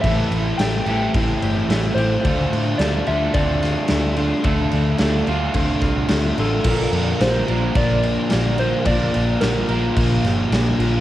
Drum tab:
CC |xxxxxxxx|xxxxxxxx|xxxxxxxx|xxxxxxxx|
SD |--o---o-|--o--oo-|--o--oo-|--o---o-|
BD |o---o---|o---o---|o---oo--|o---o---|

CC |xxxxxxxx|
SD |--o--oo-|
BD |o---o---|